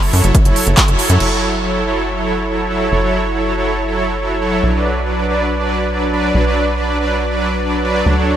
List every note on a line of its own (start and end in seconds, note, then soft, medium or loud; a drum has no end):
0.02 0.10 F#3 medium
0.02 0.10 E4 medium
0.02 0.10 A4 medium
0.02 0.10 C#5 medium
0.02 open hi-hat medium
0.13 0.22 F#2 medium
0.13 0.28 F#3 medium
0.13 0.28 E4 medium
0.13 0.28 A4 medium
0.13 0.28 C#5 medium
0.13 open hi-hat loud
0.24 0.33 F#1 medium
0.24 closed hi-hat medium
0.35 kick loud
0.35 closed hi-hat loud
0.45 0.54 F#1 medium
0.45 0.60 F#3 medium
0.45 0.60 E4 medium
0.45 0.60 A4 medium
0.45 0.60 C#5 medium
0.45 closed hi-hat medium
0.56 open hi-hat loud
0.67 0.76 F#1 medium
0.67 closed hi-hat medium
0.77 0.92 F#3 medium
0.77 0.92 E4 medium
0.77 0.92 A4 medium
0.77 0.93 C#5 medium
0.77 kick loud
0.77 clap loud
0.77 closed hi-hat medium
0.88 0.97 F#1 medium
0.88 closed hi-hat medium
0.99 1.14 F#3 medium
0.99 1.14 E4 medium
0.99 1.14 A4 medium
0.99 1.14 C#5 medium
0.99 open hi-hat loud
1.10 1.18 F#2 medium
1.10 closed hi-hat medium
1.20 2.90 F#1 medium
1.20 1.28 F#3 medium
1.20 1.28 E4 medium
1.20 1.28 A4 medium
1.20 1.28 C#5 medium
1.20 crash medium
1.31 1.46 F#3 medium
1.31 1.46 E4 medium
1.31 1.46 A4 medium
1.31 1.46 C#5 medium
1.63 1.71 F#3 medium
1.63 1.71 E4 medium
1.63 1.71 A4 medium
1.63 1.71 C#5 medium
1.74 1.81 F#3 medium
1.74 1.81 E4 medium
1.74 1.81 A4 medium
1.74 1.81 C#5 medium
1.85 2.00 F#3 medium
1.85 2.00 E4 medium
1.85 2.00 A4 medium
1.85 2.00 C#5 medium
2.17 2.32 F#3 medium
2.17 2.32 E4 medium
2.17 2.32 A4 medium
2.17 2.32 C#5 medium
2.49 2.64 F#3 medium
2.49 2.64 E4 medium
2.49 2.64 A4 medium
2.49 2.64 C#5 medium
2.70 2.85 F#3 medium
2.70 2.85 E4 medium
2.70 2.85 A4 medium
2.70 2.85 C#5 medium
2.92 4.61 F#1 medium
2.92 2.99 F#3 medium
2.92 2.99 E4 medium
2.92 2.99 A4 medium
2.92 2.99 C#5 medium
3.02 3.17 F#3 medium
3.02 3.17 E4 medium
3.02 3.17 A4 medium
3.02 3.17 C#5 medium
3.35 3.42 F#3 medium
3.35 3.42 E4 medium
3.35 3.42 A4 medium
3.35 3.42 C#5 medium
3.45 3.53 F#3 medium
3.45 3.53 E4 medium
3.45 3.53 A4 medium
3.45 3.53 C#5 medium
3.56 3.71 F#3 medium
3.56 3.71 E4 medium
3.56 3.71 A4 medium
3.56 3.71 C#5 medium
3.88 4.03 F#3 medium
3.88 4.03 E4 medium
3.88 4.03 A4 medium
3.88 4.03 C#5 medium
4.20 4.35 F#3 medium
4.20 4.35 E4 medium
4.20 4.35 A4 medium
4.20 4.35 C#5 medium
4.42 4.57 F#3 medium
4.42 4.57 E4 medium
4.42 4.57 A4 medium
4.42 4.57 C#5 medium
4.63 6.33 B1 medium
4.63 4.71 F#3 medium
4.63 4.71 D4 medium
4.63 4.71 B4 medium
4.63 4.71 D5 medium
4.74 4.89 F#3 medium
4.74 4.89 D4 medium
4.74 4.89 B4 medium
4.74 4.89 D5 medium
5.06 5.13 F#3 medium
5.06 5.13 D4 medium
5.06 5.14 B4 medium
5.06 5.14 D5 medium
5.17 5.24 F#3 medium
5.17 5.24 D4 medium
5.17 5.24 B4 medium
5.17 5.24 D5 medium
5.27 5.42 F#3 medium
5.27 5.42 D4 medium
5.27 5.42 B4 medium
5.27 5.42 D5 medium
5.60 5.75 F#3 medium
5.60 5.75 D4 medium
5.60 5.75 B4 medium
5.60 5.75 D5 medium
5.92 6.07 F#3 medium
5.92 6.07 D4 medium
5.92 6.07 B4 medium
5.92 6.07 D5 medium
6.13 6.28 F#3 medium
6.13 6.28 D4 medium
6.13 6.28 B4 medium
6.13 6.28 D5 medium
6.35 8.04 B1 medium
6.35 6.42 F#3 medium
6.35 6.42 D4 medium
6.35 6.42 B4 medium
6.35 6.42 D5 medium
6.45 6.60 F#3 medium
6.45 6.60 D4 medium
6.45 6.60 B4 medium
6.45 6.60 D5 medium
6.77 6.85 F#3 medium
6.77 6.85 D4 medium
6.77 6.85 B4 medium
6.77 6.85 D5 medium
6.88 6.96 F#3 medium
6.88 6.96 D4 medium
6.88 6.96 B4 medium
6.88 6.96 D5 medium
6.99 7.14 F#3 medium
6.99 7.14 D4 medium
6.99 7.14 B4 medium
6.99 7.14 D5 medium
7.31 7.46 F#3 medium
7.31 7.46 D4 medium
7.31 7.46 B4 medium
7.31 7.46 D5 medium
7.63 7.78 F#3 medium
7.63 7.78 D4 medium
7.63 7.78 B4 medium
7.63 7.78 D5 medium
7.85 8.00 F#3 medium
7.85 8.00 D4 medium
7.85 8.00 B4 medium
7.85 8.00 D5 medium
8.06 8.37 D2 medium
8.06 8.14 F#3 medium
8.06 8.14 D4 medium
8.06 8.14 A4 medium
8.06 8.14 C#5 medium
8.17 8.32 F#3 medium
8.17 8.32 D4 medium
8.17 8.32 A4 medium
8.17 8.32 C#5 medium